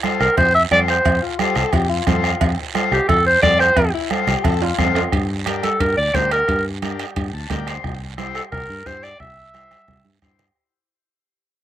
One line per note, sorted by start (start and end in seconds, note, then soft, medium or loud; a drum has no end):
0.03 0.27 F4 medium
0.03 0.28 A4 medium
0.03 0.28 C5 medium
0.03 bombo rim medium
0.03 high conga medium
0.03 short guiro medium
0.20 0.27 C2 medium
0.20 0.36 A#4 medium
0.20 bombo rim medium
0.20 short guiro medium
0.37 0.65 F2 loud
0.37 0.53 C5 loud
0.37 bombo low medium
0.37 bombo rim medium
0.37 cowbell medium
0.37 low conga medium
0.37 long guiro medium
0.54 0.62 E5 loud
0.71 0.98 F2 medium
0.71 0.95 F4 medium
0.71 0.95 A4 medium
0.71 0.96 C5 medium
0.71 0.80 D5 loud
0.71 bombo rim medium
0.71 high conga medium
0.71 short guiro medium
0.88 1.21 C5 medium
0.88 bombo rim medium
0.88 short guiro medium
1.05 1.19 F2 loud
1.05 bombo low medium
1.05 bombo rim medium
1.05 cowbell loud
1.05 long guiro medium
1.22 1.40 F4 medium
1.39 1.63 F4 medium
1.39 1.58 G4 medium
1.39 1.63 A4 medium
1.39 1.64 C5 medium
1.39 bombo rim medium
1.39 high conga medium
1.39 short guiro medium
1.55 1.63 C2 medium
1.55 1.74 A4 loud
1.55 bombo rim medium
1.55 short guiro medium
1.72 2.00 F2 medium
1.72 1.88 G4 loud
1.72 bombo low medium
1.72 bombo rim medium
1.72 cowbell medium
1.72 low conga medium
1.72 long guiro medium
1.89 2.53 F4 medium
2.06 2.34 F2 medium
2.06 2.31 F4 medium
2.06 2.31 A4 medium
2.06 2.31 C5 medium
2.06 bombo low medium
2.06 bombo rim medium
2.06 high conga medium
2.06 low timbale medium
2.06 short guiro medium
2.24 bombo rim medium
2.24 short guiro medium
2.41 2.55 F2 loud
2.41 bombo low medium
2.41 bombo rim medium
2.41 cowbell medium
2.41 long guiro medium
2.74 2.98 F4 medium
2.74 2.99 A4 medium
2.74 2.99 C5 medium
2.74 bombo rim medium
2.74 high conga medium
2.74 short guiro medium
2.92 2.98 C2 medium
2.92 3.08 G4 medium
2.92 bombo rim medium
2.92 short guiro medium
3.08 3.36 F2 loud
3.08 3.24 A4 medium
3.08 bombo low medium
3.08 bombo rim medium
3.08 cowbell medium
3.08 low conga medium
3.08 long guiro medium
3.26 3.42 C5 loud
3.42 3.70 F2 medium
3.42 3.66 F4 medium
3.42 3.67 A4 medium
3.42 3.67 C5 medium
3.42 3.58 D5 loud
3.42 bombo low medium
3.42 bombo rim medium
3.42 high conga medium
3.42 low timbale medium
3.42 short guiro medium
3.59 3.92 C5 medium
3.59 bombo rim medium
3.59 short guiro medium
3.76 3.90 F2 loud
3.76 bombo low medium
3.76 bombo rim medium
3.76 cowbell loud
3.76 long guiro medium
3.94 4.12 E4 medium
4.10 4.34 F4 medium
4.10 4.30 F4 medium
4.10 4.34 A4 medium
4.10 4.34 C5 medium
4.10 bombo rim medium
4.10 high conga medium
4.10 short guiro medium
4.27 4.34 C2 medium
4.27 4.46 G4 loud
4.27 bombo rim medium
4.27 high conga medium
4.27 short guiro medium
4.44 4.72 F2 loud
4.44 4.64 A4 loud
4.44 bombo low medium
4.44 bombo rim medium
4.44 cowbell medium
4.44 low conga medium
4.44 long guiro medium
4.62 5.13 F4 medium
4.62 high timbale loud
4.78 5.06 F2 medium
4.78 5.02 F4 medium
4.78 5.02 A4 medium
4.78 5.02 C5 medium
4.78 bombo low medium
4.78 bombo rim medium
4.78 high conga medium
4.78 short guiro medium
4.85 low timbale medium
4.95 bombo rim medium
4.95 low timbale loud
4.95 short guiro medium
5.12 5.67 G2 medium
5.12 bombo low medium
5.12 bombo rim medium
5.12 high timbale medium
5.12 long guiro medium
5.46 5.70 D4 medium
5.46 5.70 G4 medium
5.46 5.70 A#4 medium
5.46 bombo rim medium
5.46 high conga medium
5.46 high timbale medium
5.46 short guiro medium
5.63 5.82 A4 medium
5.63 bombo rim medium
5.63 high conga medium
5.63 high timbale medium
5.63 short guiro medium
5.80 5.94 G2 medium
5.80 5.97 A#4 medium
5.80 bombo low medium
5.80 bombo rim medium
5.80 high timbale medium
5.80 long guiro medium
5.97 6.11 D2 medium
5.97 6.16 D5 medium
6.14 6.41 D2 medium
6.14 6.38 D4 medium
6.14 6.38 G4 medium
6.14 6.38 A#4 medium
6.14 6.31 C5 medium
6.14 bombo low medium
6.14 bombo rim medium
6.14 high conga medium
6.14 high timbale medium
6.14 low timbale medium
6.14 short guiro medium
6.31 6.63 A#4 medium
6.31 bombo rim medium
6.31 high timbale medium
6.31 short guiro medium
6.48 7.03 G2 medium
6.48 bombo low medium
6.48 bombo rim medium
6.48 high timbale medium
6.48 long guiro medium
6.82 7.06 D4 medium
6.82 7.06 G4 medium
6.82 7.06 A#4 medium
6.82 bombo rim medium
6.82 high conga medium
6.82 high timbale medium
6.82 short guiro medium
6.99 bombo rim medium
6.99 high timbale medium
6.99 short guiro medium
7.16 7.30 G2 medium
7.16 bombo low medium
7.16 bombo rim medium
7.16 high timbale medium
7.16 long guiro medium
7.33 7.47 D2 medium
7.33 7.49 A5 medium
7.50 7.77 D2 medium
7.50 7.74 D4 medium
7.50 7.74 G4 medium
7.50 7.74 A#4 medium
7.50 7.66 G5 medium
7.50 bombo low medium
7.50 bombo rim medium
7.50 high conga medium
7.50 high timbale medium
7.50 low timbale medium
7.50 short guiro medium
7.67 7.83 C5 medium
7.67 bombo rim medium
7.67 high timbale medium
7.67 short guiro medium
7.84 8.38 C2 medium
7.84 bombo low medium
7.84 bombo rim medium
7.84 long guiro medium
8.17 8.41 E4 medium
8.17 8.42 G4 medium
8.17 8.42 C5 medium
8.17 bombo rim medium
8.17 high conga medium
8.17 short guiro medium
8.35 8.43 A4 medium
8.35 bombo rim medium
8.35 short guiro medium
8.52 8.66 C2 medium
8.52 8.88 A#4 medium
8.52 bombo low medium
8.52 bombo rim medium
8.52 long guiro medium
8.69 8.83 G2 medium
8.86 9.13 G2 medium
8.86 9.10 E4 medium
8.86 9.10 G4 medium
8.86 9.10 C5 medium
8.86 9.04 C5 medium
8.86 bombo low medium
8.86 bombo rim medium
8.86 high conga medium
8.86 short guiro medium
9.03 9.19 D5 medium
9.03 bombo rim medium
9.03 short guiro medium
9.20 9.74 C2 medium
9.20 10.18 E5 medium
9.20 bombo low medium
9.20 bombo rim medium
9.20 long guiro medium
9.53 9.77 E4 medium
9.53 9.77 G4 medium
9.53 9.78 C5 medium
9.53 bombo rim medium
9.53 high conga medium
9.53 short guiro medium
9.71 bombo rim medium
9.71 high conga medium
9.71 short guiro medium
9.88 10.02 C2 medium
9.88 bombo low medium
9.88 bombo rim medium
9.88 high conga medium
9.88 long guiro medium
10.04 10.18 G2 medium
10.04 high conga medium
10.22 10.49 G2 medium
10.22 10.46 E4 medium
10.22 10.46 G4 medium
10.22 10.46 C5 medium
10.22 bombo low medium
10.22 bombo rim medium
10.22 short guiro medium
10.39 bombo rim medium
10.39 low conga medium
10.39 short guiro medium